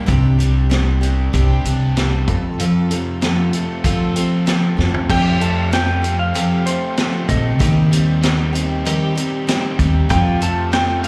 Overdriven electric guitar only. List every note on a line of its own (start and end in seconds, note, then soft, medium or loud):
0.08 1.65 C3 medium
0.40 0.70 G3 medium
0.72 1.95 G3 medium
1.03 3.53 C4 medium
1.33 2.27 G4 medium
1.65 2.28 D4 medium
1.96 2.27 G3 medium
2.27 2.58 F2 medium
2.59 4.16 F2 medium
2.90 4.47 C3 medium
3.22 4.46 F3 medium
3.53 4.77 A3 medium
3.85 5.10 F4 medium
4.16 5.10 C4 medium
4.47 5.09 F3 medium
4.78 5.10 A3 medium
5.10 5.72 F3 medium
5.41 6.65 A3 medium
5.73 7.29 F3 medium
6.03 6.97 C4 medium
6.35 8.85 G4 medium
6.66 7.28 A3 medium
6.97 8.54 C4 medium
7.29 7.60 A3 medium
7.60 8.21 D#3 medium
7.91 9.15 G3 medium
8.22 9.79 D#3 medium
8.54 9.47 C4 medium
8.86 10.10 G4 medium
9.16 9.78 G3 medium
9.48 10.10 C4 medium
9.79 10.10 G3 medium
10.11 10.71 F3 medium
10.41 11.08 A3 medium
10.72 11.08 F3 medium
11.03 11.08 C4 medium